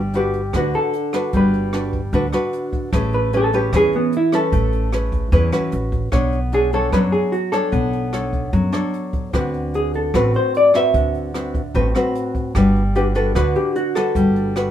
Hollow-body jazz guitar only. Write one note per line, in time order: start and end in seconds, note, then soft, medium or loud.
0.17 0.53 G4 medium
0.58 0.75 F#4 medium
0.75 1.30 A4 medium
1.37 1.91 B4 medium
3.14 3.33 B4 medium
3.37 3.54 A4 medium
3.55 3.73 G4 medium
3.76 3.94 G#4 loud
3.96 4.14 B3 medium
4.17 4.34 E4 medium
4.35 4.90 A4 medium
6.54 6.74 G#4 medium
6.74 6.93 A4 medium
6.93 6.98 B4 loud
7.12 7.33 G#4 medium
7.32 7.53 F#4 medium
7.52 8.69 A4 medium
9.75 9.95 G#4 medium
9.96 10.15 A4 medium
10.16 10.34 B4 medium
10.36 10.54 C5 medium
10.57 10.76 D5 medium
10.76 11.92 E5 medium
12.96 13.01 G4 medium
13.16 13.34 A4 medium
13.36 13.56 B4 medium
13.56 13.76 G4 medium
13.76 13.96 F#4 medium
13.96 14.71 A4 medium